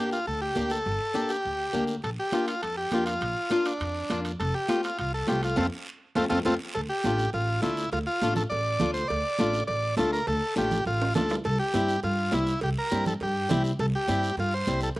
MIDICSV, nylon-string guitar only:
0, 0, Header, 1, 2, 480
1, 0, Start_track
1, 0, Tempo, 294118
1, 1394, Time_signature, 4, 2, 24, 8
1, 24473, End_track
2, 0, Start_track
2, 0, Title_t, "Nylon-string guitar"
2, 0, Program_c, 0, 24
2, 0, Note_on_c, 0, 58, 68
2, 0, Note_on_c, 0, 62, 64
2, 0, Note_on_c, 0, 67, 73
2, 287, Note_off_c, 0, 58, 0
2, 288, Note_off_c, 0, 62, 0
2, 292, Note_off_c, 0, 67, 0
2, 899, Note_on_c, 0, 58, 64
2, 910, Note_on_c, 0, 62, 60
2, 925, Note_on_c, 0, 67, 71
2, 1244, Note_off_c, 0, 58, 0
2, 1247, Note_off_c, 0, 62, 0
2, 1256, Note_off_c, 0, 67, 0
2, 1857, Note_on_c, 0, 58, 82
2, 1864, Note_on_c, 0, 62, 74
2, 1872, Note_on_c, 0, 67, 86
2, 2203, Note_off_c, 0, 58, 0
2, 2205, Note_off_c, 0, 62, 0
2, 2210, Note_off_c, 0, 67, 0
2, 2823, Note_on_c, 0, 58, 76
2, 2833, Note_on_c, 0, 62, 68
2, 2842, Note_on_c, 0, 67, 83
2, 3166, Note_off_c, 0, 58, 0
2, 3171, Note_off_c, 0, 62, 0
2, 3176, Note_off_c, 0, 67, 0
2, 3792, Note_on_c, 0, 58, 66
2, 3798, Note_on_c, 0, 62, 62
2, 3802, Note_on_c, 0, 65, 73
2, 4132, Note_off_c, 0, 58, 0
2, 4133, Note_off_c, 0, 62, 0
2, 4136, Note_off_c, 0, 65, 0
2, 4777, Note_on_c, 0, 58, 68
2, 4784, Note_on_c, 0, 62, 60
2, 4788, Note_on_c, 0, 65, 69
2, 5105, Note_off_c, 0, 58, 0
2, 5105, Note_off_c, 0, 62, 0
2, 5110, Note_off_c, 0, 65, 0
2, 5707, Note_on_c, 0, 58, 75
2, 5722, Note_on_c, 0, 62, 73
2, 5736, Note_on_c, 0, 65, 89
2, 6050, Note_off_c, 0, 58, 0
2, 6057, Note_off_c, 0, 62, 0
2, 6064, Note_off_c, 0, 65, 0
2, 6686, Note_on_c, 0, 58, 74
2, 6698, Note_on_c, 0, 62, 73
2, 6702, Note_on_c, 0, 65, 80
2, 7021, Note_off_c, 0, 58, 0
2, 7023, Note_off_c, 0, 62, 0
2, 7028, Note_off_c, 0, 65, 0
2, 7639, Note_on_c, 0, 57, 69
2, 7646, Note_on_c, 0, 65, 78
2, 7648, Note_on_c, 0, 60, 62
2, 7977, Note_off_c, 0, 57, 0
2, 7980, Note_off_c, 0, 65, 0
2, 7981, Note_off_c, 0, 60, 0
2, 8599, Note_on_c, 0, 57, 67
2, 8607, Note_on_c, 0, 60, 60
2, 8617, Note_on_c, 0, 65, 68
2, 8937, Note_off_c, 0, 57, 0
2, 8942, Note_off_c, 0, 60, 0
2, 8944, Note_off_c, 0, 65, 0
2, 9074, Note_on_c, 0, 57, 88
2, 9076, Note_on_c, 0, 60, 86
2, 9087, Note_on_c, 0, 65, 85
2, 9231, Note_off_c, 0, 60, 0
2, 9233, Note_off_c, 0, 57, 0
2, 9234, Note_off_c, 0, 65, 0
2, 10060, Note_on_c, 0, 60, 84
2, 10061, Note_on_c, 0, 57, 83
2, 10066, Note_on_c, 0, 65, 80
2, 10207, Note_off_c, 0, 60, 0
2, 10208, Note_off_c, 0, 57, 0
2, 10209, Note_off_c, 0, 65, 0
2, 10276, Note_on_c, 0, 60, 80
2, 10286, Note_on_c, 0, 65, 90
2, 10291, Note_on_c, 0, 57, 85
2, 10433, Note_off_c, 0, 60, 0
2, 10437, Note_off_c, 0, 65, 0
2, 10442, Note_off_c, 0, 57, 0
2, 10531, Note_on_c, 0, 57, 84
2, 10536, Note_on_c, 0, 60, 89
2, 10536, Note_on_c, 0, 65, 87
2, 10682, Note_off_c, 0, 65, 0
2, 10683, Note_off_c, 0, 57, 0
2, 10684, Note_off_c, 0, 60, 0
2, 11505, Note_on_c, 0, 57, 71
2, 11513, Note_on_c, 0, 65, 75
2, 11516, Note_on_c, 0, 62, 64
2, 11832, Note_off_c, 0, 57, 0
2, 11833, Note_off_c, 0, 65, 0
2, 11836, Note_off_c, 0, 62, 0
2, 12430, Note_on_c, 0, 57, 66
2, 12437, Note_on_c, 0, 62, 61
2, 12447, Note_on_c, 0, 65, 73
2, 12773, Note_off_c, 0, 57, 0
2, 12777, Note_off_c, 0, 62, 0
2, 12782, Note_off_c, 0, 65, 0
2, 13425, Note_on_c, 0, 57, 72
2, 13427, Note_on_c, 0, 62, 64
2, 13437, Note_on_c, 0, 65, 77
2, 13748, Note_off_c, 0, 62, 0
2, 13751, Note_off_c, 0, 57, 0
2, 13756, Note_off_c, 0, 65, 0
2, 14365, Note_on_c, 0, 57, 68
2, 14373, Note_on_c, 0, 62, 63
2, 14382, Note_on_c, 0, 65, 76
2, 14700, Note_off_c, 0, 57, 0
2, 14704, Note_off_c, 0, 62, 0
2, 14708, Note_off_c, 0, 65, 0
2, 15321, Note_on_c, 0, 57, 73
2, 15330, Note_on_c, 0, 62, 66
2, 15338, Note_on_c, 0, 65, 80
2, 15658, Note_off_c, 0, 57, 0
2, 15664, Note_off_c, 0, 62, 0
2, 15664, Note_off_c, 0, 65, 0
2, 16288, Note_on_c, 0, 62, 61
2, 16291, Note_on_c, 0, 57, 72
2, 16301, Note_on_c, 0, 65, 78
2, 16619, Note_off_c, 0, 62, 0
2, 16623, Note_off_c, 0, 57, 0
2, 16627, Note_off_c, 0, 65, 0
2, 17228, Note_on_c, 0, 62, 63
2, 17229, Note_on_c, 0, 57, 68
2, 17245, Note_on_c, 0, 65, 79
2, 17569, Note_off_c, 0, 62, 0
2, 17571, Note_off_c, 0, 57, 0
2, 17578, Note_off_c, 0, 65, 0
2, 18197, Note_on_c, 0, 57, 64
2, 18203, Note_on_c, 0, 62, 62
2, 18218, Note_on_c, 0, 65, 77
2, 18534, Note_off_c, 0, 57, 0
2, 18536, Note_off_c, 0, 62, 0
2, 18544, Note_off_c, 0, 65, 0
2, 19158, Note_on_c, 0, 55, 67
2, 19159, Note_on_c, 0, 60, 68
2, 19175, Note_on_c, 0, 64, 79
2, 19493, Note_off_c, 0, 55, 0
2, 19493, Note_off_c, 0, 60, 0
2, 19502, Note_off_c, 0, 64, 0
2, 20094, Note_on_c, 0, 55, 67
2, 20100, Note_on_c, 0, 60, 66
2, 20106, Note_on_c, 0, 64, 75
2, 20441, Note_off_c, 0, 55, 0
2, 20444, Note_off_c, 0, 60, 0
2, 20445, Note_off_c, 0, 64, 0
2, 21075, Note_on_c, 0, 55, 73
2, 21079, Note_on_c, 0, 60, 67
2, 21084, Note_on_c, 0, 64, 83
2, 21410, Note_off_c, 0, 55, 0
2, 21411, Note_off_c, 0, 60, 0
2, 21414, Note_off_c, 0, 64, 0
2, 22015, Note_on_c, 0, 55, 71
2, 22026, Note_on_c, 0, 60, 65
2, 22040, Note_on_c, 0, 64, 77
2, 22359, Note_off_c, 0, 55, 0
2, 22364, Note_off_c, 0, 60, 0
2, 22371, Note_off_c, 0, 64, 0
2, 22976, Note_on_c, 0, 55, 76
2, 22983, Note_on_c, 0, 60, 66
2, 22994, Note_on_c, 0, 64, 81
2, 23318, Note_off_c, 0, 55, 0
2, 23323, Note_off_c, 0, 60, 0
2, 23325, Note_off_c, 0, 64, 0
2, 23951, Note_on_c, 0, 55, 72
2, 23962, Note_on_c, 0, 60, 63
2, 23968, Note_on_c, 0, 64, 78
2, 24286, Note_off_c, 0, 55, 0
2, 24288, Note_off_c, 0, 64, 0
2, 24289, Note_off_c, 0, 60, 0
2, 24473, End_track
0, 0, End_of_file